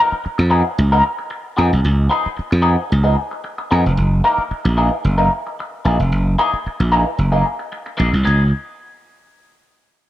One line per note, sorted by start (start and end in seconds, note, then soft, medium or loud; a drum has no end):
0.00 0.14 F3 medium
0.00 0.14 B3 medium
0.00 0.15 D#4 loud
0.00 0.15 A#4 loud
0.12 muted slap bass stroke soft
0.24 muted clean electric guitar stroke soft
0.24 muted slap bass stroke soft
0.38 0.62 F2 medium
0.38 muted clean electric guitar stroke medium
0.50 0.67 F3 medium
0.50 0.65 B3 medium
0.50 0.64 D#4 medium
0.50 0.65 G#4 medium
0.66 muted clean electric guitar stroke soft
0.78 1.01 C#2 loud
0.78 muted clean electric guitar stroke soft
0.92 1.04 F3 medium
0.92 1.04 B3 medium
0.92 1.04 D#4 medium
0.92 1.05 A#4 medium
1.05 muted clean electric guitar stroke soft
1.18 muted clean electric guitar stroke soft
1.30 muted clean electric guitar stroke soft
1.57 1.70 F2 medium
1.57 1.71 F3 medium
1.57 1.71 B3 medium
1.57 1.71 D#4 medium
1.57 1.71 G#4 medium
1.72 1.83 C2 medium
1.72 muted clean electric guitar stroke soft
1.84 2.08 C#2 loud
2.10 2.27 F3 medium
2.10 2.28 B3 medium
2.10 2.28 D#4 loud
2.10 2.28 G#4 loud
2.26 muted slap bass stroke soft
2.37 muted clean electric guitar stroke soft
2.37 muted slap bass stroke soft
2.51 2.75 F2 medium
2.51 muted clean electric guitar stroke soft
2.62 2.80 F3 medium
2.62 2.76 B3 medium
2.62 2.76 D#4 medium
2.62 2.76 G#4 medium
2.77 muted clean electric guitar stroke soft
2.90 3.15 C#2 loud
2.90 muted clean electric guitar stroke soft
3.04 3.16 F3 medium
3.04 3.16 B3 medium
3.04 3.16 D#4 medium
3.04 3.17 G#4 medium
3.17 muted clean electric guitar stroke soft
3.31 muted clean electric guitar stroke soft
3.44 muted clean electric guitar stroke soft
3.58 muted clean electric guitar stroke soft
3.71 3.84 F2 medium
3.71 3.88 F3 medium
3.71 3.84 B3 medium
3.71 3.84 D#4 medium
3.71 3.84 G#4 medium
3.85 3.97 F1 medium
3.85 muted clean electric guitar stroke soft
3.97 4.21 F#1 loud
4.24 4.42 E3 medium
4.24 4.42 A#3 medium
4.24 4.42 D#4 medium
4.24 4.42 A#4 loud
4.38 muted slap bass stroke soft
4.51 muted clean electric guitar stroke soft
4.51 muted slap bass stroke soft
4.65 4.89 A#1 loud
4.65 muted clean electric guitar stroke soft
4.77 4.95 E3 medium
4.77 4.92 A#3 medium
4.77 4.91 D#4 medium
4.77 4.90 G#4 medium
4.92 muted clean electric guitar stroke soft
5.04 5.28 F#1 medium
5.04 muted clean electric guitar stroke soft
5.18 5.31 E3 medium
5.18 5.31 A#3 medium
5.18 5.31 D#4 medium
5.18 5.32 A#4 medium
5.32 muted clean electric guitar stroke soft
5.47 muted clean electric guitar stroke soft
5.60 muted clean electric guitar stroke soft
5.85 5.97 A#1 medium
5.85 5.99 E3 medium
5.85 5.99 A#3 medium
5.85 5.99 D#4 medium
5.85 5.98 G#4 medium
5.99 6.12 F1 medium
5.99 muted clean electric guitar stroke medium
6.12 6.35 F#1 loud
6.39 6.56 E3 loud
6.39 6.56 A#3 medium
6.39 6.56 D#4 medium
6.39 6.56 G#4 loud
6.53 muted slap bass stroke soft
6.66 muted clean electric guitar stroke soft
6.66 muted slap bass stroke soft
6.80 7.03 A#1 medium
6.80 muted clean electric guitar stroke soft
6.92 7.09 E3 medium
6.92 7.06 A#3 medium
6.92 7.05 D#4 medium
6.92 7.05 G#4 medium
7.06 muted clean electric guitar stroke soft
7.18 7.42 F#1 medium
7.18 muted clean electric guitar stroke soft
7.32 7.45 E3 medium
7.32 7.45 A#3 medium
7.32 7.46 D#4 medium
7.32 7.46 G#4 medium
7.46 muted clean electric guitar stroke soft
7.59 muted clean electric guitar stroke soft
7.72 muted clean electric guitar stroke soft
7.86 muted clean electric guitar stroke soft
7.97 8.12 A#1 medium
7.97 8.15 E3 medium
7.97 8.12 A#3 medium
7.97 8.11 D#4 medium
7.97 8.11 G#4 medium
8.12 8.24 C2 medium
8.12 muted clean electric guitar stroke soft
8.24 8.51 C#2 loud
8.24 8.42 F3 medium
8.24 8.42 B3 medium
8.24 8.42 D#4 medium
8.24 8.42 G#4 loud